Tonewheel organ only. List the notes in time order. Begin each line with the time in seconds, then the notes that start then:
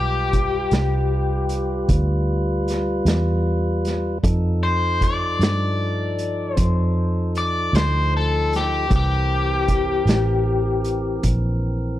Already playing: G3 F4 B4
4.23 F3 D#4 A4
8.87 E3 C4 A#4